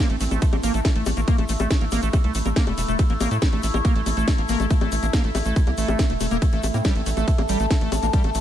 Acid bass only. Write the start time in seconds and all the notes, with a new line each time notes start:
0.10 A3
0.21 A3
0.31 A3
0.42 A3
0.53 A#3
0.63 A#3
0.74 A3
0.85 A3
0.96 A3
1.06 A3
1.17 A#3
1.28 A#3
1.38 A3
1.49 A3
1.60 A3
1.81 A#3
1.92 A#3
2.03 A3
2.13 A3
2.24 A3
2.35 A3
2.46 A#3
2.56 A#3
2.67 A3
2.78 A3
2.88 A3
2.99 A3
3.10 A#3
3.21 A#3
3.31 A3
3.42 A3
3.53 A3
3.63 A3
3.74 A#3
3.85 A#3
3.96 A3
4.06 A3
4.17 A3
4.28 A3
4.38 A#3
4.49 A#3
4.60 A3
4.71 A3
4.81 A3
4.92 A3
5.03 A#3
5.13 A#3
5.24 A3
5.35 A3
5.46 A3
5.56 A3
5.67 A#3
5.78 A3
5.99 A#3
6.10 A3
6.21 A3
6.31 A#3
6.42 A3
6.53 A3
6.63 A3
6.74 A#3
6.85 G3
6.96 A3
7.06 A3
7.17 A3
7.28 A3
7.38 A#3
7.49 G3
7.60 A3
7.71 A3
7.81 A3
7.92 A3
8.03 A#3
8.13 G3
8.24 A3
8.35 A3